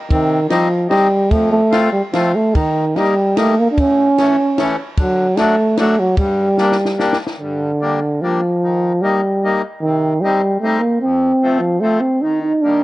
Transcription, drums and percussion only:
0.10 kick medium
0.10 ride soft
0.50 snare medium
0.50 ride soft
0.91 snare medium
0.91 ride soft
1.31 kick medium
1.31 ride soft
1.72 snare medium
1.72 ride soft
2.13 snare medium
2.13 ride soft
2.55 kick medium
2.55 ride soft
2.96 snare medium
2.96 ride soft
3.37 snare medium
3.37 ride medium
3.78 kick medium
3.78 ride soft
4.18 snare soft
4.18 ride soft
4.58 snare medium
4.58 ride soft
4.97 kick medium
4.97 ride soft
5.37 snare medium
5.37 ride soft
5.77 snare medium
5.77 ride soft
6.17 kick medium
6.17 ride soft
6.58 snare soft
6.72 snare soft
6.85 snare soft
6.99 snare medium
7.13 snare medium
7.27 snare medium

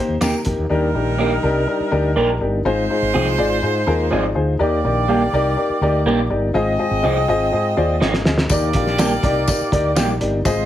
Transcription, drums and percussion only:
0.21 snare loud
0.21 closed hi-hat medium
0.21 tambourine medium
0.45 kick medium
0.45 closed hi-hat medium
8.01 snare medium
8.14 snare medium
8.25 snare medium
8.38 snare medium
8.50 kick loud
8.50 closed hi-hat medium
8.50 tambourine medium
8.73 kick medium
8.73 closed hi-hat medium
8.87 snare soft
8.98 snare loud
8.98 closed hi-hat medium
8.98 tambourine loud
9.23 kick loud
9.23 closed hi-hat medium
9.48 kick loud
9.48 closed hi-hat medium
9.48 tambourine medium
9.72 kick loud
9.72 closed hi-hat medium
9.96 snare loud
9.96 closed hi-hat loud
9.96 tambourine loud
10.21 closed hi-hat medium
10.45 kick loud
10.45 closed hi-hat medium
10.45 tambourine medium

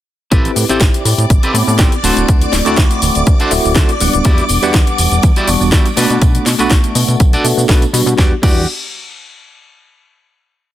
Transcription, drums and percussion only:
0.32 kick loud
0.32 closed hi-hat medium
0.32 shaker soft
0.45 closed hi-hat medium
0.45 shaker soft
0.56 open hi-hat loud
0.56 shaker medium
0.69 closed hi-hat soft
0.69 shaker soft
0.81 kick loud
0.81 snare loud
0.81 closed hi-hat medium
0.81 shaker soft
0.94 closed hi-hat medium
0.94 shaker soft
1.05 open hi-hat loud
1.05 shaker medium
1.19 closed hi-hat soft
1.19 shaker soft
1.30 kick loud
1.30 closed hi-hat medium
1.30 shaker soft
1.43 closed hi-hat medium
1.43 shaker soft
1.55 open hi-hat loud
1.55 shaker medium
1.68 shaker soft
1.79 kick loud
1.79 snare loud
1.79 closed hi-hat medium
1.79 shaker soft
1.92 closed hi-hat medium
1.92 shaker soft
2.04 open hi-hat loud
2.04 shaker medium
2.17 closed hi-hat soft
2.17 shaker soft
2.28 kick loud
2.28 closed hi-hat medium
2.28 shaker soft
2.42 closed hi-hat medium
2.42 shaker soft
2.52 snare medium
2.52 open hi-hat loud
2.52 shaker medium
2.66 closed hi-hat soft
2.66 shaker soft
2.77 kick loud
2.77 snare loud
2.77 closed hi-hat medium
2.77 shaker soft
2.91 closed hi-hat medium
2.91 shaker soft
3.02 open hi-hat loud
3.02 shaker medium
3.15 closed hi-hat soft
3.15 shaker soft
3.27 kick loud
3.27 closed hi-hat medium
3.27 shaker soft
3.40 closed hi-hat medium
3.40 shaker soft
3.51 open hi-hat loud
3.51 shaker medium
3.65 shaker soft
3.75 kick loud
3.75 snare loud
3.75 closed hi-hat medium
3.75 shaker soft
3.89 closed hi-hat medium
3.89 shaker soft
4.00 open hi-hat loud
4.00 shaker medium
4.13 closed hi-hat soft
4.13 shaker soft
4.24 kick loud
4.24 closed hi-hat medium
4.24 tambourine medium
4.24 shaker soft
4.38 closed hi-hat medium
4.38 shaker soft
4.49 open hi-hat loud
4.49 tambourine medium
4.49 shaker medium
4.63 closed hi-hat soft
4.63 tambourine soft
4.63 shaker soft
4.74 kick loud
4.74 snare loud
4.74 closed hi-hat medium
4.74 tambourine medium
4.74 shaker soft
4.87 closed hi-hat medium
4.87 shaker soft
4.98 open hi-hat loud
4.98 tambourine medium
4.98 shaker medium
5.12 closed hi-hat soft
5.12 tambourine soft
5.12 shaker soft
5.22 kick loud
5.22 closed hi-hat medium
5.22 tambourine medium
5.22 shaker soft
5.36 closed hi-hat soft
5.36 tambourine soft
5.36 shaker soft
5.48 open hi-hat loud
5.48 tambourine medium
5.48 shaker medium
5.61 tambourine soft
5.61 shaker soft
5.72 kick loud
5.72 snare loud
5.72 closed hi-hat medium
5.72 tambourine medium
5.72 shaker soft
5.86 closed hi-hat medium
5.86 tambourine soft
5.86 shaker soft
5.97 open hi-hat loud
5.97 tambourine loud
5.97 shaker medium
6.10 closed hi-hat soft
6.10 tambourine soft
6.10 shaker soft
6.22 kick loud
6.22 closed hi-hat medium
6.22 tambourine medium
6.22 shaker soft
6.35 closed hi-hat medium
6.35 shaker soft
6.46 snare medium
6.46 open hi-hat loud
6.46 tambourine medium
6.46 shaker medium
6.59 closed hi-hat soft
6.59 tambourine soft
6.59 shaker soft
6.70 kick loud
6.70 snare loud
6.70 closed hi-hat medium
6.70 shaker soft
6.84 closed hi-hat medium
6.84 shaker soft
6.95 open hi-hat loud
6.95 tambourine medium
6.95 shaker medium
7.08 closed hi-hat soft
7.08 tambourine soft
7.08 shaker soft
7.20 kick loud
7.20 closed hi-hat medium
7.20 tambourine medium
7.20 shaker soft
7.33 closed hi-hat soft
7.33 tambourine soft
7.33 shaker soft
7.45 open hi-hat loud
7.45 tambourine medium
7.45 shaker medium
7.58 tambourine soft
7.58 shaker soft
7.69 kick loud
7.69 snare loud
7.69 open hi-hat medium
7.69 tambourine medium
7.69 shaker soft
7.82 closed hi-hat medium
7.82 tambourine soft
7.82 shaker soft
7.94 open hi-hat loud
7.94 tambourine loud
7.94 shaker medium
8.07 closed hi-hat soft
8.07 shaker soft
8.18 kick loud
8.18 snare medium
8.43 kick loud
8.43 crash medium

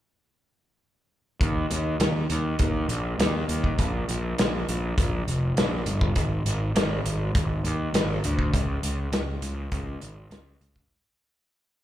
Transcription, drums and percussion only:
1.41 kick loud
1.41 closed hi-hat medium
1.71 closed hi-hat medium
2.00 snare loud
2.00 closed hi-hat medium
2.30 closed hi-hat medium
2.59 kick loud
2.59 closed hi-hat medium
2.89 closed hi-hat medium
3.20 snare loud
3.20 closed hi-hat medium
3.49 closed hi-hat medium
3.64 kick medium
3.79 kick medium
3.79 closed hi-hat medium
4.09 closed hi-hat medium
4.38 snare loud
4.38 closed hi-hat medium
4.69 closed hi-hat medium
4.98 kick loud
4.98 closed hi-hat medium
5.28 closed hi-hat soft
5.57 snare loud
5.57 closed hi-hat medium
5.86 closed hi-hat medium
6.01 kick medium
6.16 kick medium
6.16 closed hi-hat medium
6.46 closed hi-hat medium
6.76 snare loud
6.76 closed hi-hat medium
7.06 closed hi-hat medium
7.35 kick loud
7.35 closed hi-hat medium
7.65 closed hi-hat medium
7.94 snare loud
7.94 closed hi-hat medium
8.24 closed hi-hat medium
8.39 kick medium
8.54 kick medium
8.54 closed hi-hat medium
8.83 closed hi-hat medium
9.13 snare loud
9.13 closed hi-hat medium
9.42 closed hi-hat medium
9.72 kick loud
9.72 closed hi-hat medium
10.01 closed hi-hat medium
10.31 snare loud
10.31 closed hi-hat medium
10.61 closed hi-hat medium
10.76 kick medium

